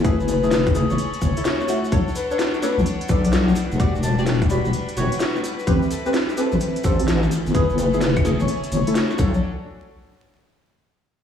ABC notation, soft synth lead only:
X:1
M:4/4
L:1/16
Q:"Swing 16ths" 1/4=128
K:F#phr
V:1 name="Soft synth lead"
B B B3 z2 c c z c4 z2 | z2 B B z2 B z3 d d d z3 | z2 a z3 b b z8 | z2 A A z2 A z3 =c z4 z |
B B B3 z2 c c z c4 z2 | z16 |]